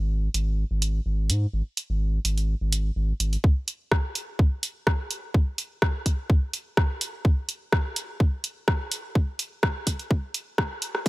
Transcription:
0.00 analog synth bass G#1
0.34 analog synth bass G#1, closed hi-hat
0.71 analog synth bass G#1
0.82 closed hi-hat
1.06 analog synth bass G#1
1.30 analog synth bass G#2, closed hi-hat
1.53 analog synth bass G#1
1.77 closed hi-hat
1.90 analog synth bass G#1
2.25 analog synth bass G#1, closed hi-hat
2.38 closed hi-hat
2.61 analog synth bass G#1
2.73 closed hi-hat
2.96 analog synth bass G#1
3.20 analog synth bass G#1, closed hi-hat
3.33 closed hi-hat
3.44 kick
3.68 closed hi-hat
3.92 kick, cross-stick
4.15 closed hi-hat
4.39 kick
4.63 closed hi-hat
4.87 kick, cross-stick
5.11 closed hi-hat
5.34 kick
5.58 closed hi-hat
5.82 kick, cross-stick
6.06 kick, closed hi-hat
6.30 kick
6.53 closed hi-hat
6.77 kick, cross-stick
7.01 closed hi-hat
7.25 kick
7.49 closed hi-hat
7.72 kick, cross-stick
7.96 closed hi-hat
8.20 kick
8.44 closed hi-hat
8.68 kick, cross-stick
8.92 closed hi-hat
9.15 kick
9.39 closed hi-hat
9.63 kick, cross-stick
9.87 kick, closed hi-hat
9.99 closed hi-hat
10.11 kick
10.34 closed hi-hat
10.58 kick, cross-stick
10.82 closed hi-hat
10.95 cross-stick

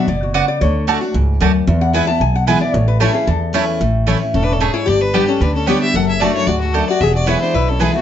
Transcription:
0.08 upright bass F#1, steel-string acoustic guitar B2, resonator guitar played with a steel bar D5
0.23 resonator guitar played with a steel bar F#4
0.34 steel-string acoustic guitar C#3, mandolin B3 F#4 D5 F#5, resonator guitar played with a steel bar B4
0.48 resonator guitar played with a steel bar D5
0.61 upright bass D2, steel-string acoustic guitar D3, resonator guitar played with a steel bar C#5
0.87 steel-string acoustic guitar D3 A3 D4 F#4, mandolin A3 F#4 D5 A5
1.01 steel-string acoustic guitar D4 F#4
1.14 upright bass C#2, steel-string acoustic guitar G#2
1.40 upright bass D2, steel-string acoustic guitar F#2, mandolin A3 F#4 D5 A5
1.67 steel-string acoustic guitar E2, upright bass E2
1.81 resonator guitar played with a steel bar F#5
1.93 steel-string acoustic guitar E3 G#3 B3 E4, mandolin B3 E4 B4 G#5, resonator guitar played with a steel bar G#5
2.07 steel-string acoustic guitar B3 E4, resonator guitar played with a steel bar A5
2.20 upright bass B1, steel-string acoustic guitar B2, resonator guitar played with a steel bar G#5
2.35 resonator guitar played with a steel bar F#5
2.47 steel-string acoustic guitar E3 G#3 B3 E4, mandolin B3 E4 B4 G#5, resonator guitar played with a steel bar E5
2.61 steel-string acoustic guitar B3 E4, resonator guitar played with a steel bar D5
2.74 upright bass A1, steel-string acoustic guitar A2, resonator guitar played with a steel bar C#5
2.88 resonator guitar played with a steel bar B4
3.00 steel-string acoustic guitar E3 A3 C#4 E4, mandolin A3 E4 C#5 A5, resonator guitar played with a steel bar A4
3.14 steel-string acoustic guitar C#4 E4, resonator guitar played with a steel bar G#4
3.27 steel-string acoustic guitar E2, upright bass E2, resonator guitar played with a steel bar A4
3.53 steel-string acoustic guitar E3 A3 C#4 E4, mandolin A3 E4 C#5 A5
3.81 upright bass A1, steel-string acoustic guitar A2
4.07 steel-string acoustic guitar E3 A3 C#4 E4, mandolin A3 E4 C#5 A5
4.21 steel-string acoustic guitar C#4 E4
4.34 upright bass E1, steel-string acoustic guitar A2, resonator guitar played with a steel bar C#4, fiddle A4
4.42 resonator guitar played with a steel bar D4, fiddle B4
4.51 resonator guitar played with a steel bar C#4, fiddle A4
4.60 steel-string acoustic guitar G#2, mandolin A3 E4 C#5 A5, resonator guitar played with a steel bar C#4, fiddle G#4
4.73 resonator guitar played with a steel bar E4, fiddle C#5
4.86 upright bass G1, steel-string acoustic guitar G2, resonator guitar played with a steel bar G4, fiddle D5
5.00 resonator guitar played with a steel bar D4, fiddle B4
5.14 steel-string acoustic guitar G3 B3 D4 G4, mandolin B3 G4 D5 G5, resonator guitar played with a steel bar B3, fiddle G4
5.27 resonator guitar played with a steel bar C#4, steel-string acoustic guitar D4 G4, fiddle A4
5.41 upright bass D2, steel-string acoustic guitar D3, resonator guitar played with a steel bar D4, fiddle B4
5.55 resonator guitar played with a steel bar C#4, fiddle A4
5.67 steel-string acoustic guitar G3 B3 D4 G4, mandolin B3 G4 D5 G5, resonator guitar played with a steel bar G4, fiddle C#5
5.82 resonator guitar played with a steel bar G4, fiddle E5
5.94 upright bass F#1, steel-string acoustic guitar F#2, resonator guitar played with a steel bar A4, fiddle F#5
6.08 resonator guitar played with a steel bar G#4, fiddle E5
6.20 steel-string acoustic guitar F#3 A3 D4 F#4, mandolin A3 F#4 D5 A5, resonator guitar played with a steel bar F#4, fiddle D5
6.34 resonator guitar played with a steel bar E4, fiddle C#5
6.47 upright bass D2, steel-string acoustic guitar G#2, resonator guitar played with a steel bar F#4, fiddle D5
6.61 resonator guitar played with a steel bar A3, fiddle F#4
6.73 steel-string acoustic guitar F#2, mandolin A3 F#4 D5 A5, resonator guitar played with a steel bar D4, fiddle A4
6.88 resonator guitar played with a steel bar F#4, fiddle D5
7.01 upright bass E1, steel-string acoustic guitar E2, resonator guitar played with a steel bar G#4, fiddle E5
7.14 resonator guitar played with a steel bar F#4, fiddle D5
7.26 steel-string acoustic guitar E3 G#3 B3 E4, mandolin B3 E4 B4 G#5, resonator guitar played with a steel bar E4, fiddle C#5
7.41 resonator guitar played with a steel bar D4, fiddle C5
7.54 upright bass B1, steel-string acoustic guitar B2, resonator guitar played with a steel bar E4, fiddle B4
7.69 resonator guitar played with a steel bar C#4, fiddle A4
7.79 steel-string acoustic guitar E3 G#3 B3 E4, mandolin B3 E4 B4 G#5, resonator guitar played with a steel bar B3, fiddle G#4
7.94 resonator guitar played with a steel bar A3, steel-string acoustic guitar B3 E4, fiddle F#4

